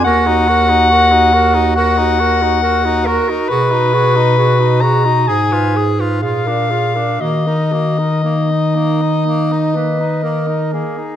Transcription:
<<
  \new Staff \with { instrumentName = "Soprano saxophone" } { \time 4/4 \key ees \minor \tempo 4 = 64 ges''2 ges''4. bes'8 | b'4. bes''8 aes''8 r8 f''4 | ees''2.~ ees''8 aes'8 | }
  \new Staff \with { instrumentName = "Clarinet" } { \time 4/4 \key ees \minor bes'16 ges'16 bes'16 ges'16 bes'16 ges'16 bes'16 ges'16 bes'16 ges'16 bes'16 ges'16 bes'16 ges'16 bes'16 ges'16 | gis'16 fis'16 gis'16 fis'16 gis'16 fis'16 gis'16 fis'16 aes'16 ces''16 aes'16 ces''16 aes'16 bes'16 aes'16 bes'16 | ges'16 bes'16 ges'16 bes'16 ees'4. ces''8 bes'4 | }
  \new Staff \with { instrumentName = "Tenor saxophone" } { \time 4/4 \key ees \minor ges'16 ees'16 ges'16 ees'16 ges'16 ees'16 ges'16 ees'16 ges'16 ees'16 ges'16 ees'16 ges'16 ees'16 ges'16 ees'16 | fis'16 dis'16 fis'16 dis'16 fis'16 dis'16 fis'16 dis'16 aes'16 f'16 aes'16 f'16 f'16 d'16 f'16 d'16 | bes16 ees'16 bes16 ees'16 bes16 ees'16 bes16 ees'16 bes16 ees'16 bes16 ees'16 bes16 ees'16 bes16 ees'16 | }
  \new Staff \with { instrumentName = "Bass clarinet" } { \clef bass \time 4/4 \key ees \minor ees,2.~ ees,8 r8 | b,2 aes,4 bes,4 | ees2.~ ees8 r8 | }
>>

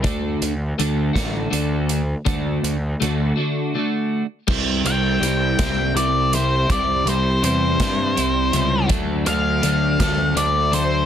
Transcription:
<<
  \new Staff \with { instrumentName = "Lead electric guitar" } { \time 6/8 \key c \lydian \tempo 4. = 54 r2. | r2. | r8 g''4. d''8 c''8 | d''8 c''8 c''2 |
r8 f''4. d''8 c''8 | }
  \new Staff \with { instrumentName = "Clean electric guitar" } { \time 6/8 \key c \lydian <d a d' fis'>8 r8 <d a d' fis'>8 <d a d' fis'>8 <d a d' fis'>8 r8 | <d a d' fis'>8 r8 <d a d' fis'>8 <d a d' fis'>8 <d a d' fis'>8 r8 | <c g c' e'>8 <c g c' e'>8 <c g c' e'>8 <c g c' e'>8 <c g c' e'>8 <c g c' e'>8 | <g c' e'>8 <c g c' e'>8 <c g c' e'>8 <c g c' e'>8 <c g c' e'>8 <c g c' e'>8 |
<d fis a d'>8 <d fis a d'>8 <d fis a d'>8 <d fis a d'>8 <d fis a d'>8 <d fis a d'>8 | }
  \new Staff \with { instrumentName = "Picked electric bass" } { \clef bass \time 6/8 \key c \lydian d,8 d,8 d,8 a,,8 d,4 | d,8 d,8 d,8 r4. | c,8 c,8 c,8 c,8 c,4 | c,8 c,8 e,8 g,8 c,8 cis,8 |
d,8 d,8 d,8 d,8 d,4 | }
  \new DrumStaff \with { instrumentName = "Drums" } \drummode { \time 6/8 <hh bd>8 hh8 hh8 <hh bd sn>8 hh8 hh8 | <hh bd>8 hh8 hh8 r4. | <cymc bd>8 hh8 hh8 <hh bd sn>8 hh8 hh8 | <hh bd>8 hh8 hh8 <hh bd sn>8 hh8 hh8 |
<hh bd>8 hh8 hh8 <hh bd sn>8 hh8 hh8 | }
>>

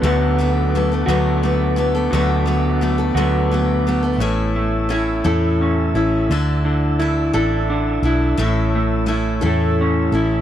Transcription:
<<
  \new Staff \with { instrumentName = "Tonewheel organ" } { \time 6/8 \key d \major \tempo 4. = 57 << { <fis'' a'' d'''>2.~ | <fis'' a'' d'''>2. | <e'' a'' e'''>2.~ | <e'' a'' e'''>2.~ |
<e'' a'' e'''>2. | } \\ { b'2.~ | b'2. | cis''2. | d''2. |
cis''2. | } >> }
  \new Staff \with { instrumentName = "Clean electric guitar" } { \time 6/8 \key d \major <d fis a b fis'>4. <d fis a b fis'>4. | <d fis a b fis'>4. <d fis a b fis'>4. | a,8 a8 e'8 a'8 cis'8 e'8 | d8 d8 e'8 a'8 d'8 e'8 |
a,8 a8 e'8 a'8 cis'8 e'8 | }
  \new Staff \with { instrumentName = "Steel-string acoustic guitar" } { \time 6/8 \key d \major <d fis a b a'>8 <fis a b a'>8 <fis a b a'>16 <a b a'>16 <d fis a b a'>8 <fis a b a'>8 <fis a b a'>16 <a b a'>16 | <d fis a b a'>8 <fis a b a'>8 <fis a b a'>16 <a b a'>16 <d fis a b a'>8 <fis a b a'>8 <fis a b a'>16 <a b a'>16 | <a, a cis' e' a'>4 <a cis' e' a'>8 <a, a cis' e' a'>4 <cis' e' a'>8 | <d d' e' a'>4 <d d' e' a'>8 <d d' e' a'>4 <d' e' a'>8 |
<a, a cis' e' a'>4 <a cis' e' a'>8 <a, a cis' e' a'>4 <cis' e' a'>8 | }
  \new Staff \with { instrumentName = "Fingered electric bass" } { \clef bass \time 6/8 \key d \major d,4. d,4. | d,4. d,4. | a,,4. e,4 a,,8 | d,4. a,,4 b,,8 |
a,,4. e,4 a,,8 | }
>>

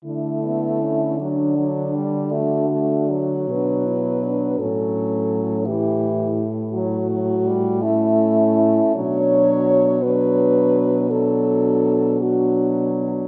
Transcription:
<<
  \new Staff \with { instrumentName = "French horn" } { \time 12/8 \key d \major \tempo 4. = 55 e'4. d'4. fis'4. b'4. | a'4. g'4 r8 fis'4. e'4. | cis''4. b'4. a'4. fis'4 r8 | }
  \new Staff \with { instrumentName = "French horn" } { \time 12/8 \key d \major d'8 b8 cis'8 d'2. d'8 e'8 d'8 | cis'4. e'2~ e'8 r8 cis'4. | d'4. d'4. d'4. d'4. | }
  \new Staff \with { instrumentName = "French horn" } { \clef bass \time 12/8 \key d \major a4. fis8 fis8 g8 a8 a8 fis2 | fis4. e4 r8 fis8 fis8 g8 a4. | fis4. fis4. fis4. fis4. | }
  \new Staff \with { instrumentName = "French horn" } { \clef bass \time 12/8 \key d \major d1~ d8 b,4. | a,1. | b,1. | }
>>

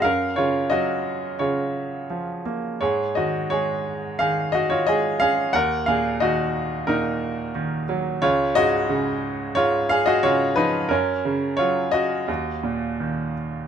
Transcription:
<<
  \new Staff \with { instrumentName = "Grand piano" } { \time 4/4 \key ees \minor \tempo 4 = 88 <bes' f''>8 <f' des''>8 <ges' ees''>4 <f' des''>4. r8 | <aes' des''>8 <ges' ees''>8 <aes' des''>4 <aes' f''>8 <ges' ees''>16 <f' des''>16 <aes' ees''>8 <aes' f''>8 | <bes' ges''>8 <aes' f''>8 <ges' ees''>4 <ees' bes'>4. r8 | <f' des''>8 <ges' ees''>4. <f' des''>8 <aes' f''>16 <ges' ees''>16 <f' des''>8 <ees' ces''>8 |
<des' bes'>4 <f' des''>8 <ges' ees''>2 r8 | }
  \new Staff \with { instrumentName = "Grand piano" } { \clef bass \time 4/4 \key ees \minor ges,8 des8 ges4 des4 f8 bes8 | aes,8 ees8 aes4 ees4 aes8 des'8 | ees,8 bes,8 ees4 bes,4 ees8 ges8 | des,8 aes,8 des4 aes,4 des8 f8 |
ges,8 des8 ges4 ees,8 bes,8 ees4 | }
>>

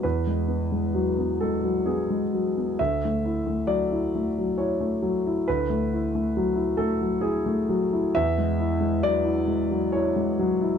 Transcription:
<<
  \new Staff \with { instrumentName = "Grand piano" } { \time 3/4 \key e \mixolydian \tempo 4 = 67 b'4. a'8 gis'4 | e''4 d''4 cis''4 | b'4. a'8 gis'4 | e''4 d''4 cis''4 | }
  \new Staff \with { instrumentName = "Grand piano" } { \time 3/4 \key e \mixolydian <e, b>16 gis16 b16 gis16 fis16 b16 gis16 fis16 b16 gis16 fis16 b16 | d,16 a16 e'16 a16 fis16 e'16 a16 fis16 e'16 a16 fis16 e'16 | d,16 a16 e'16 a16 fis16 e'16 a16 fis16 e'16 a16 fis16 e'16 | e,16 gis16 e'16 gis16 fis16 e'16 gis16 fis16 e'16 gis16 fis16 e'16 | }
>>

